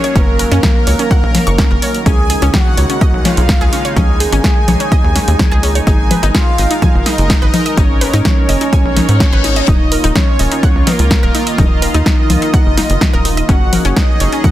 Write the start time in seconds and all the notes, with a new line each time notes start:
Already playing: D#3 F#3 A#3 C#4 G#4 C#5
0.04 C#5, closed hi-hat
0.15 F#1 A#3 C#4 A#4, kick, closed hi-hat
0.39 A#4, open hi-hat
0.51 F#2 C#4, closed hi-hat
0.63 kick, snare, closed hi-hat, low conga
0.87 C#2 C#5, open hi-hat
0.99 C#4, closed hi-hat
1.11 F#5, kick, closed hi-hat
1.23 A#1
1.35 A#5, snare, open hi-hat, low conga
1.47 F#1 C#6, closed hi-hat
1.58 C#4, kick, snare, closed hi-hat
1.71 F#1 A#4
1.82 C#5, open hi-hat
1.94 closed hi-hat
2.06 C#2 C#3 G#3 C#4 D#4 G#4 G#5, kick, closed hi-hat
2.30 G#4, open hi-hat
2.42 C#2 C#4, closed hi-hat
2.54 F#4 F#5, kick, snare, closed hi-hat, low conga
2.77 C#2 C#5, open hi-hat
2.90 C#4, closed hi-hat
3.01 D#5, kick, closed hi-hat
3.13 B1
3.25 C#4 F4 F5, snare, open hi-hat, low conga
3.37 B1, closed hi-hat
3.49 kick, snare, closed hi-hat
3.61 C#2 G#4
3.73 C#4, open hi-hat
3.85 C#5, closed hi-hat
3.96 C#2 C#4 G#4 G#5, kick, closed hi-hat, low conga
4.20 G#4, open hi-hat
4.32 G#1 C#4, closed hi-hat
4.44 kick, snare, closed hi-hat
4.68 B1 C#5, open hi-hat, low conga
4.80 C#4, closed hi-hat
4.92 D#5, kick, closed hi-hat
5.04 D#2
5.16 C#4, snare, open hi-hat
5.28 D#2, closed hi-hat
5.39 kick, snare, closed hi-hat, low conga
5.51 C#2 G#4
5.63 C#4, open hi-hat
5.75 C#5, closed hi-hat
5.87 G#1 D#4 G#4 A#4 G#5, kick, closed hi-hat
6.11 B4, open hi-hat, low conga
6.23 G#1 D#4, closed hi-hat
6.35 F4 F5, kick, snare, closed hi-hat
6.58 G#1 D#5, open hi-hat
6.71 D#4, closed hi-hat
6.82 G#5, kick, closed hi-hat, low conga
6.94 F#1
7.06 D#4 D#5, snare, open hi-hat
7.18 F#1, closed hi-hat
7.30 kick, snare, closed hi-hat
7.42 G#1 B4
7.54 D#4, open hi-hat, low conga
7.66 D#5, closed hi-hat
7.77 G#1 C#4 D#4 C#5, kick, closed hi-hat
8.01 B4, open hi-hat
8.13 G#2 D#4, closed hi-hat
8.25 kick, snare, closed hi-hat, low conga
8.49 F#1 D#5, open hi-hat
8.61 D#4, closed hi-hat
8.73 G#5, kick, closed hi-hat, reverse cymbal
8.85 B1
8.96 D#4, snare, open hi-hat, low conga
9.09 G#2, closed hi-hat
9.20 kick, snare, closed hi-hat
9.32 G#1 B4
9.44 D#4, open hi-hat
9.56 D#5, closed hi-hat
9.68 D#1 D#3 A#3 D#4 F4 D#5, kick, closed hi-hat
9.92 A#4, open hi-hat
10.04 D#1 D#4, closed hi-hat
10.15 C#4 C#5, kick, snare, closed hi-hat, low conga
10.39 D#1 D#5, open hi-hat
10.52 D#4, closed hi-hat
10.63 F#5, kick, closed hi-hat
10.75 C#2
10.87 A#3 D#4 A#4, snare, open hi-hat, low conga
10.99 C#2, closed hi-hat
11.11 kick, snare, closed hi-hat
11.23 D#1 A#4
11.35 D#4, open hi-hat
11.47 D#5, closed hi-hat
11.58 D#1 D#4 D#5, kick, closed hi-hat, low conga
11.82 A#4, open hi-hat
11.94 D#2 D#4, closed hi-hat
12.06 kick, snare, closed hi-hat
12.30 C#2 D#5, open hi-hat, low conga
12.42 D#4, closed hi-hat
12.54 F#5, kick, closed hi-hat
12.66 F#1
12.77 D#4, snare, open hi-hat
12.90 F#1, closed hi-hat
13.01 kick, snare, closed hi-hat, low conga
13.13 D#1 A#4
13.25 D#4, open hi-hat
13.37 D#5, closed hi-hat
13.49 F#1 F#3 C#4 F#4 G#4 F#5, kick, closed hi-hat
13.73 A#4, open hi-hat, low conga
13.85 F#1 C#4, closed hi-hat
13.96 D#4 D#5, kick, snare, closed hi-hat
14.20 F#1 C#5, open hi-hat
14.32 C#4, closed hi-hat
14.44 F#5, kick, closed hi-hat, low conga